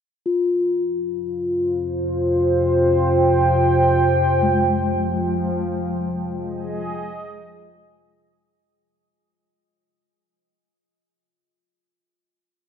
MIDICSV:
0, 0, Header, 1, 5, 480
1, 0, Start_track
1, 0, Key_signature, -4, "minor"
1, 0, Tempo, 1034483
1, 131, Time_signature, 4, 2, 24, 8
1, 5886, End_track
2, 0, Start_track
2, 0, Title_t, "Analog synth pad"
2, 0, Program_c, 0, 89
2, 142, Note_on_c, 0, 65, 66
2, 618, Note_on_c, 0, 72, 91
2, 997, Note_on_c, 0, 79, 80
2, 2057, Note_on_c, 0, 53, 71
2, 2820, Note_off_c, 0, 79, 0
2, 2821, Note_off_c, 0, 72, 0
2, 2825, Note_off_c, 0, 65, 0
2, 2914, Note_on_c, 0, 68, 79
2, 2915, Note_on_c, 0, 75, 80
2, 3971, Note_off_c, 0, 68, 0
2, 3971, Note_off_c, 0, 75, 0
2, 3974, Note_off_c, 0, 53, 0
2, 5886, End_track
3, 0, Start_track
3, 0, Title_t, "Singing bowl"
3, 0, Program_c, 1, 14
3, 120, Note_on_c, 1, 65, 56
3, 3975, Note_off_c, 1, 65, 0
3, 5886, End_track
4, 0, Start_track
4, 0, Title_t, "Bronze metallophone"
4, 0, Program_c, 2, 11
4, 2051, Note_on_c, 2, 56, 55
4, 4931, Note_off_c, 2, 56, 0
4, 5886, End_track
5, 0, Start_track
5, 0, Title_t, "Synth drone"
5, 0, Program_c, 3, 95
5, 129, Note_on_c, 3, 41, 65
5, 133, Note_on_c, 3, 48, 67
5, 4018, Note_off_c, 3, 41, 0
5, 4020, Note_off_c, 3, 48, 0
5, 5886, End_track
0, 0, End_of_file